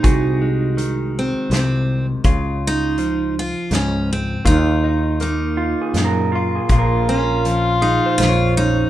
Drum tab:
HH |x-x-x-|x-x-x-|x-x-x-|x-x-x-|
SD |----o-|----o-|----o-|----o-|
BD |o-----|o-----|o-----|o-----|